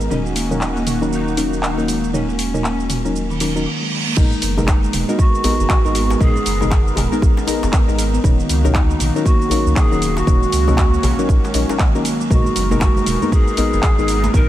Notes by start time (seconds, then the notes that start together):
Already playing: D#4
0.00 G#3, shaker
0.10 D#1 D#3 F#3 A#3 C#4 D#4 F#4 A#4, mid tom, shaker
0.26 shaker
0.35 A#3, open hi-hat, shaker
0.51 F#3 C#4 D#4 A#4, mid tom, shaker
0.61 D#3, clap, shaker
0.76 A#3, shaker
0.87 mid tom, open hi-hat, shaker
1.01 D#3 F#3 C#4 D#4 A#4, shaker
1.12 A#3 D#4, shaker
1.28 shaker
1.37 F#3 A#3 C#4 D#4 A#4, open hi-hat, shaker
1.52 D#4, shaker
1.63 D#4, clap, shaker
1.78 F#3 A#3 C#4 D#4 A#4, shaker
1.88 G#3, open hi-hat, shaker
2.04 shaker
2.13 F#3 C#4 D#4 A#4, mid tom, shaker
2.29 A#3, shaker
2.39 open hi-hat, shaker
2.54 F#3 C#4 D#4 A#4, mid tom, shaker
2.64 A#3, clap, shaker
2.80 shaker
2.90 F#3, mid tom, open hi-hat, shaker
3.05 F#3 C#4 D#4 A#4, shaker
3.16 reverse cymbal, shaker
3.30 D#3, shaker
3.40 D#3 F#3 C#4 D#4 A#4, open hi-hat, shaker
3.56 F#3 C#4 D#4 A#4, shaker
3.66 F#3
3.81 G#3
3.91 D#3
4.07 A#3
4.17 G#1 G#3 B3 D#4 A#4, kick, mid tom, crash, shaker
4.33 shaker
4.42 F#1 G#3, open hi-hat, shaker
4.57 G#3 B3 D#4 A#4, mid tom, djembe tone, shaker
4.68 D#4, finger snap, kick, clap, djembe slap, shaker
4.83 G#3, shaker
4.93 D#1, mid tom, open hi-hat, shaker
5.09 G#3 B3 D#4 F#4 A#4, shaker
5.19 D#4 F#4, kick, shaker
5.35 shaker
5.44 G#3 B3 D#4 A#4, open hi-hat, djembe tone, djembe bass, shaker
5.59 F#1 D#3, shaker
5.70 finger snap, kick, clap, shaker
5.85 G#1 G#3 B3 D#4 A#4, shaker
5.95 G#3, open hi-hat, shaker
6.10 djembe slap, shaker
6.20 G#1 G#3 B3 D#4 G#4 A#4, kick, mid tom, shaker
6.36 C#4, shaker
6.46 F#1, open hi-hat, shaker
6.61 D#3 G#3 B3 D#4 A#4, mid tom, djembe tone, shaker
6.71 finger snap, kick, clap, djembe slap, shaker
6.88 shaker
6.96 D#1 G#3, clap, mid tom, open hi-hat, djembe bass, shaker
7.12 G#3 B3 D#4 A#4, shaker
7.22 kick, djembe tone, djembe bass, shaker
7.37 C#4, djembe slap, shaker
7.47 G#3 B3 D#4 A#4, open hi-hat, djembe tone, shaker
7.63 F#1, djembe slap, shaker
7.73 G#3, finger snap, kick, clap, shaker
7.88 G#1 G#3 B3 D#4 A#4, djembe tone, shaker
7.98 open hi-hat, shaker
8.14 B3, shaker
8.24 D#1 D#3 F#3 A#3 C#4 D#4 F#4 A#4, kick, mid tom, shaker
8.40 shaker
8.49 C#2 D#3 D#4, open hi-hat, shaker
8.64 F#3 C#4 D#4 A#4, mid tom, djembe tone, shaker
8.75 D#4, finger snap, kick, clap, djembe slap, shaker
8.90 D#3, shaker
9.00 A#1, mid tom, open hi-hat, shaker
9.15 F#3 C#4 D#4 A#4, shaker
9.25 A#3 F#4, kick, shaker
9.42 shaker
9.50 F#3 C#4 D#4 A#4, open hi-hat, djembe tone, djembe bass, shaker
9.66 C#2 A#3, shaker
9.76 G#4, finger snap, kick, clap, shaker
9.92 D#1 D#3 F#3 C#4 D#4 A#4, shaker
10.02 D#3, open hi-hat, shaker
10.17 F#4, djembe slap, shaker
10.27 D#1 F#3 A#3 C#4 D#4 A#4, kick, mid tom, shaker
10.42 G#3, shaker
10.52 C#2, open hi-hat, shaker
10.68 F#3 A#3 C#4 D#4 A#4, mid tom, djembe tone, shaker
10.78 D#3, finger snap, kick, clap, djembe slap, shaker
10.94 shaker
11.03 A#1 D#3, clap, mid tom, open hi-hat, djembe bass, shaker
11.19 F#3 C#4 D#4 A#4, shaker
11.29 A#1, kick, djembe tone, djembe bass, shaker
11.44 G#3, djembe slap, shaker
11.54 A#1 F#3 C#4 D#4 A#4, open hi-hat, djembe tone, shaker
11.69 F#3 C#4 D#4 A#4, djembe slap, shaker
11.79 D#3, finger snap, kick, clap, shaker
11.95 F#3 A#3 C#4 D#4 A#4, djembe tone, shaker
12.05 open hi-hat, shaker
12.20 F#3, shaker
12.30 G#1 G#3 B3 D#4 F#4 A#4, kick, mid tom, shaker
12.45 high conga, shaker
12.56 F#1 G#3, open hi-hat, low conga, shaker
12.71 G#3 B3 D#4 A#4, mid tom, high conga, djembe tone, shaker
12.81 G#3 F#4, finger snap, kick, clap, djembe slap, shaker
12.96 G#3, high conga, shaker
13.06 D#1, mid tom, open hi-hat, shaker
13.22 G#3 B3 D#4 F#4 A#4, high conga, shaker
13.31 D#4 G#4, kick, low conga, shaker
13.48 shaker
13.57 G#3 B3 D#4 A#4, open hi-hat, djembe tone, djembe bass, shaker
13.73 F#1 D#3, shaker
13.83 finger snap, kick, clap, shaker
13.98 G#1 G#3 B3 D#4 A#4, shaker
14.08 G#3, open hi-hat, shaker
14.23 djembe slap, high conga, shaker
14.34 G#1 G#3 B3 D#4 A#4, kick, mid tom, shaker